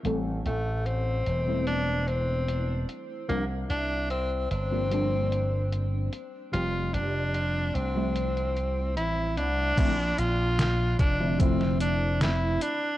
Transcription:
<<
  \new Staff \with { instrumentName = "Tenor saxophone" } { \time 4/4 \key bes \lydian \tempo 4 = 74 r8 a8 c'4 d'8 c'4 r8 | bes8 d'8 c'8 c'2 r8 | f'8 d'4 c'4. e'8 d'8~ | d'8 f'4 d'8 c'8 d'8 e'8 d'8 | }
  \new Staff \with { instrumentName = "FM electric piano" } { \time 4/4 \key bes \lydian <e g a c' a'>4.~ <e g a c' a'>16 <e g a c' e'>2~ <e g a c' e'>16 | <f g bes c' d'>16 r4. <f g bes c' d'>16 <f g bes c' d'>4. r8 | <f g a c' g'>4.~ <f g a c' g'>16 <f g a c' e'>2~ <f g a c' e'>16 | <d f a c' e'>16 r4. <d f a c' e'>16 <d f a c' e'>4. r8 | }
  \new Staff \with { instrumentName = "Slap bass" } { \clef bass \time 4/4 \key bes \lydian a,,8 a,,4 e,,2 r8 | c,8 c,4 g,,2 r8 | f,,8 f,,4 c,4. a,,8 c,8 | bes,,8 bes,,4 f,,2 r8 | }
  \new DrumStaff \with { instrumentName = "Drums" } \drummode { \time 4/4 hh8 hh8 hh8 hh8 hh8 hh8 hh8 hh8 | hh8 hh8 hh8 hh8 hh8 hh8 hh8 hh8 | hh8 hh8 hh8 hh8 hh16 hh16 hh8 hh8 hh8 | <cymc hh bd>8 hh8 <hh sn>8 <hh bd>8 <hh bd>16 sn16 hh8 <hh sn>8 hh8 | }
>>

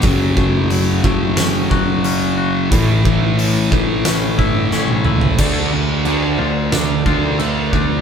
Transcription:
<<
  \new Staff \with { instrumentName = "Clean electric guitar" } { \time 4/4 \key a \phrygian \tempo 4 = 90 fis8 a8 fis8 a8 cis'8 fis'8 cis'8 fis'8 | a,8 e8 e8 a8 cis'8 e'8 cis'8 e'8 | \key d \minor d8 d8 d'8 f'8 d'8 f'8 a8 d'8 | }
  \new Staff \with { instrumentName = "Distorted electric guitar" } { \clef bass \time 4/4 \key a \phrygian <fis, cis fis>4. <fis, cis fis>2~ <fis, cis fis>8 | <a, e a>4. <a, e a>2~ <a, e a>8 | \key d \minor <d a d'>8 <d a>8 <d a d'>8 <d a>8 <d a>8 <d a d'>8 <d a>8 <d a>8 | }
  \new Staff \with { instrumentName = "Picked electric bass" } { \clef bass \time 4/4 \key a \phrygian fis,,8 fis,,4 fis,,4 fis,,4. | a,,8 a,4 a,,4 g,,8 a,,8 cis,8 | \key d \minor d,4. d,4 d,4 d,8 | }
  \new DrumStaff \with { instrumentName = "Drums" } \drummode { \time 4/4 <hho bd>8 bd8 hho8 bd8 <hho sn>8 bd8 hho4 | <hho bd>8 bd8 hho8 bd8 <hho sn>8 bd8 sn16 tommh16 toml16 tomfh16 | <cymc bd>4 cymc4 <cymc sn>8 bd8 cymc8 bd8 | }
>>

